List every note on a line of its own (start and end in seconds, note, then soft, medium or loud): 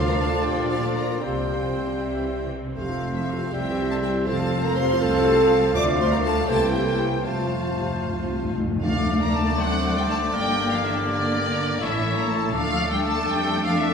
0.00 0.33 D2 medium
0.00 1.18 F3 medium
0.00 1.19 D4 medium
0.00 1.24 F4 medium
0.00 1.20 D5 medium
0.00 0.44 F5 medium
0.00 1.22 F5 medium
0.07 0.20 F3 medium
0.07 0.20 A#4 medium
0.07 0.12 A#5 medium
0.18 0.32 D3 medium
0.18 0.45 A4 medium
0.18 0.44 A5 medium
0.31 0.44 F3 soft
0.43 1.10 A#1 medium
0.43 1.10 A#2 medium
0.43 0.56 D3 medium
0.43 0.70 G4 medium
0.43 1.21 D5 medium
0.43 0.70 G5 medium
0.57 0.70 F3 medium
0.69 0.83 D3 medium
0.69 0.84 F4 medium
0.69 0.83 F5 medium
0.82 0.96 F3 soft
0.82 0.96 A4 medium
0.82 0.96 A5 medium
0.95 1.09 D3 medium
0.95 1.23 A#4 medium
0.95 1.22 A#5 medium
1.09 1.22 F3 soft
1.21 1.87 C2 medium
1.21 1.34 C3 medium
1.21 1.88 C3 medium
1.21 2.48 G3 medium
1.21 3.53 C4 medium
1.21 2.51 C4 medium
1.21 2.48 G4 medium
1.21 2.49 C5 medium
1.21 2.37 C5 medium
1.21 2.02 F5 medium
1.21 2.49 G5 medium
1.37 1.49 F3 soft
1.49 1.62 C3 medium
1.62 1.75 F3 soft
1.75 1.88 C3 soft
1.88 2.01 F3 soft
2.00 2.64 C2 medium
2.00 2.64 C3 medium
2.00 2.13 C3 soft
2.00 2.52 E5 soft
2.14 2.26 E3 soft
2.26 2.39 C3 soft
2.39 2.52 E3 soft
2.52 2.65 C3 soft
2.64 2.77 E3 soft
2.76 3.40 F1 medium
2.76 3.49 F2 medium
2.76 3.40 F2 medium
2.76 2.89 C3 soft
2.76 3.54 A3 medium
2.76 3.49 C4 soft
2.76 3.12 F4 medium
2.76 3.49 C5 medium
2.76 3.12 F5 medium
2.76 3.55 F5 medium
2.90 3.02 F3 soft
3.03 3.15 A3 soft
3.15 3.28 F3 medium
3.15 3.28 E4 medium
3.15 3.28 E5 medium
3.27 3.41 C3 medium
3.27 3.52 F4 medium
3.27 3.53 F5 medium
3.42 3.54 F3 soft
3.51 4.14 C2 medium
3.51 4.15 C2 medium
3.51 3.65 C3 medium
3.51 4.29 G3 medium
3.51 4.26 C4 medium
3.51 4.27 E4 medium
3.51 3.88 G4 medium
3.51 4.26 C5 medium
3.51 4.23 E5 medium
3.51 4.28 E5 medium
3.51 3.90 G5 medium
3.66 3.78 E3 medium
3.78 3.90 G3 medium
3.89 4.03 C4 soft
3.89 4.02 A4 medium
3.89 3.95 A5 medium
4.02 4.16 G3 medium
4.02 4.26 G4 medium
4.02 4.10 G5 medium
4.16 4.28 E3 medium
4.26 4.88 F1 medium
4.26 4.88 F2 medium
4.26 4.40 C3 medium
4.26 5.00 F3 medium
4.26 4.99 C4 medium
4.26 6.49 F4 medium
4.26 4.63 A4 loud
4.26 4.99 C5 medium
4.26 5.71 F5 medium
4.26 4.99 F5 medium
4.26 4.63 A5 medium
4.41 4.52 F3 medium
4.53 4.64 A3 medium
4.64 4.76 F3 medium
4.64 4.76 A#4 medium
4.64 4.76 A#5 medium
4.76 4.88 C3 medium
4.76 5.00 C5 loud
4.76 5.01 C6 medium
4.90 5.01 F3 medium
5.00 5.62 C2 medium
5.00 5.73 F3 medium
5.00 5.13 A3 medium
5.00 5.73 C4 medium
5.00 5.73 A4 loud
5.00 5.73 C5 medium
5.00 5.73 F5 medium
5.00 5.74 A5 medium
5.13 5.25 F3 medium
5.25 5.37 C3 medium
5.38 5.50 F3 medium
5.50 5.62 A3 medium
5.62 5.74 F3 medium
5.74 6.36 D2 medium
5.74 5.86 D3 medium
5.74 6.50 F3 medium
5.74 6.51 A3 medium
5.74 6.44 D5 medium
5.74 5.86 D5 loud
5.74 6.47 F5 medium
5.74 6.50 F5 medium
5.74 5.82 D6 loud
5.86 5.99 F3 medium
5.98 6.11 A3 medium
5.98 6.11 C5 loud
5.98 6.11 C6 medium
6.11 6.24 F3 medium
6.11 6.24 A#4 medium
6.11 6.16 A#5 medium
6.22 6.36 D3 medium
6.22 6.46 A4 medium
6.22 6.47 A5 medium
6.37 6.49 F3 medium
6.47 7.12 C2 medium
6.47 6.60 C3 medium
6.47 7.27 E3 medium
6.47 7.25 A#3 medium
6.47 7.26 E4 medium
6.47 6.72 A4 medium
6.47 7.24 C5 medium
6.47 7.25 G5 medium
6.47 7.26 G5 medium
6.47 6.73 A5 medium
6.61 6.73 E3 medium
6.72 6.86 G3 medium
6.72 6.85 G4 medium
6.72 6.86 G5 medium
6.84 6.98 A#3 medium
6.84 6.98 A4 medium
6.84 6.99 A5 medium
6.98 7.11 G3 soft
6.98 7.24 G4 medium
6.98 7.25 G5 medium
7.11 7.25 E3 soft
7.23 7.91 F1 medium
7.23 7.32 F2 soft
7.23 7.91 F2 medium
7.23 7.38 C3 soft
7.23 8.57 F3 medium
7.23 8.54 A3 soft
7.23 8.53 F4 medium
7.23 8.59 F4 soft
7.23 8.54 C5 soft
7.23 8.54 F5 medium
7.23 8.54 A5 medium
7.23 8.41 A5 medium
7.33 7.40 F2 soft
7.39 7.49 F2 soft
7.39 7.52 F3 soft
7.50 7.56 F2 soft
7.50 7.65 A3 soft
7.58 7.65 F2 soft
7.65 7.71 F2 soft
7.65 7.78 F3 soft
7.72 7.79 F2 soft
7.78 7.88 F2 soft
7.78 7.91 C3 soft
7.89 7.95 F2 medium
7.89 8.04 F3 soft
7.96 8.03 F2 soft
8.04 8.70 C2 medium
8.04 8.12 F2 medium
8.04 8.17 A3 soft
8.13 8.19 F2 medium
8.13 8.30 F3 soft
8.20 8.27 F2 medium
8.28 8.35 F2 medium
8.28 8.43 C3 soft
8.37 8.43 F2 medium
8.43 8.51 F2 medium
8.43 8.56 F3 soft
8.53 8.59 F2 medium
8.53 8.69 A3 soft
8.60 8.67 F2 medium
8.68 8.75 F2 medium
8.68 8.82 F3 soft
8.76 8.82 F2 medium
8.82 10.29 D2 medium
8.82 11.76 D3 medium
8.82 9.55 D3 medium
8.82 9.18 F3 medium
8.82 10.29 A3 medium
8.82 9.18 A3 medium
8.82 9.55 A3 medium
8.82 9.54 D4 medium
8.82 11.77 D4 medium
8.82 10.30 A4 medium
8.82 9.59 D5 medium
8.82 11.77 D5 medium
8.82 9.18 F5 medium
8.82 11.77 D6 medium
9.20 9.58 A#3 medium
9.20 9.33 A#3 medium
9.20 9.33 A#5 medium
9.33 9.58 A3 medium
9.33 9.58 A5 medium
9.57 9.96 F#3 medium
9.57 10.33 C4 medium
9.57 10.29 C4 medium
9.57 10.31 D4 medium
9.57 10.32 C5 medium
9.57 9.96 F#5 loud
9.96 10.08 G3 medium
9.96 10.02 G5 medium
10.08 10.33 A3 medium
10.08 10.17 A5 medium
10.33 11.78 G1 medium
10.33 10.70 G3 medium
10.33 11.77 A#3 medium
10.33 11.06 A#3 medium
10.33 11.77 A#3 medium
10.33 11.06 D4 medium
10.33 11.77 G4 medium
10.33 11.82 A#4 medium
10.33 10.70 G5 loud
10.71 10.83 F3 medium
10.71 10.84 F5 medium
10.83 11.08 E3 medium
10.83 10.92 E5 medium
11.07 11.81 D3 medium
11.07 11.79 A#3 medium
11.07 11.79 D4 medium
11.07 11.80 D5 loud
11.80 12.52 A1 medium
11.80 12.50 A2 medium
11.80 12.16 E3 medium
11.80 13.94 A3 medium
11.80 12.53 A3 medium
11.80 13.94 A3 medium
11.80 12.54 C#4 medium
11.80 12.50 C#4 medium
11.80 12.52 E4 medium
11.80 12.50 E4 medium
11.80 13.94 A4 medium
11.80 12.18 E5 loud
11.80 12.55 C#6 medium
12.17 12.29 A#3 medium
12.17 12.30 A#5 medium
12.29 12.54 A3 medium
12.29 12.55 A5 medium
12.53 13.27 D2 medium
12.53 12.90 F3 medium
12.53 13.26 A3 medium
12.53 13.94 D4 medium
12.53 13.27 D4 medium
12.53 13.94 D4 medium
12.53 12.90 F5 loud
12.53 13.94 D6 medium
12.91 13.03 G3 medium
12.91 13.03 G5 medium
13.03 13.11 A3 medium
13.03 13.27 A5 loud
13.27 13.94 F2 medium
13.27 13.63 G3 medium
13.27 13.94 A3 medium
13.27 13.94 D4 medium
13.27 13.65 G5 loud
13.64 13.76 F3 medium
13.64 13.77 F5 medium
13.77 13.85 E3 medium
13.77 13.94 E5 loud